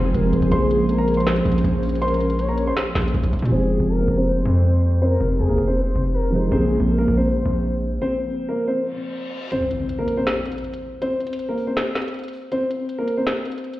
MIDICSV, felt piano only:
0, 0, Header, 1, 2, 480
1, 0, Start_track
1, 0, Tempo, 375000
1, 662, Time_signature, 4, 2, 24, 8
1, 17663, End_track
2, 0, Start_track
2, 0, Title_t, "Felt piano"
2, 0, Program_c, 0, 0
2, 0, Control_c, 0, 64, 127
2, 0, Note_on_c, 0, 48, 54
2, 0, Note_on_c, 0, 53, 48
2, 0, Note_on_c, 0, 56, 49
2, 0, Note_on_c, 0, 60, 56
2, 602, Note_on_c, 0, 49, 68
2, 618, Note_off_c, 0, 53, 0
2, 637, Note_on_c, 0, 53, 66
2, 646, Note_off_c, 0, 48, 0
2, 654, Note_off_c, 0, 56, 0
2, 673, Note_off_c, 0, 60, 0
2, 674, Note_on_c, 0, 56, 61
2, 678, Control_c, 0, 64, 0
2, 710, Note_on_c, 0, 58, 68
2, 914, Control_c, 0, 64, 127
2, 4420, Note_off_c, 0, 49, 0
2, 4438, Note_off_c, 0, 53, 0
2, 4445, Note_on_c, 0, 48, 63
2, 4456, Note_off_c, 0, 56, 0
2, 4474, Note_off_c, 0, 58, 0
2, 4481, Note_on_c, 0, 53, 58
2, 4517, Note_on_c, 0, 56, 58
2, 4518, Control_c, 0, 64, 0
2, 4553, Note_on_c, 0, 60, 74
2, 4741, Control_c, 0, 64, 127
2, 8022, Note_off_c, 0, 48, 0
2, 8040, Note_off_c, 0, 53, 0
2, 8058, Note_off_c, 0, 56, 0
2, 8069, Note_on_c, 0, 48, 62
2, 8076, Note_off_c, 0, 60, 0
2, 8087, Note_on_c, 0, 53, 61
2, 8105, Note_on_c, 0, 56, 57
2, 8123, Note_on_c, 0, 63, 68
2, 8289, Note_on_c, 0, 49, 61
2, 8305, Note_off_c, 0, 53, 0
2, 8324, Note_on_c, 0, 53, 58
2, 8325, Note_off_c, 0, 48, 0
2, 8342, Note_off_c, 0, 56, 0
2, 8352, Note_off_c, 0, 63, 0
2, 8356, Control_c, 0, 64, 0
2, 8361, Note_on_c, 0, 56, 57
2, 8397, Note_on_c, 0, 58, 74
2, 8549, Control_c, 0, 64, 127
2, 10280, Control_c, 0, 64, 0
2, 11384, Note_off_c, 0, 49, 0
2, 11402, Note_off_c, 0, 53, 0
2, 11420, Note_off_c, 0, 56, 0
2, 11438, Note_off_c, 0, 58, 0
2, 17663, End_track
0, 0, End_of_file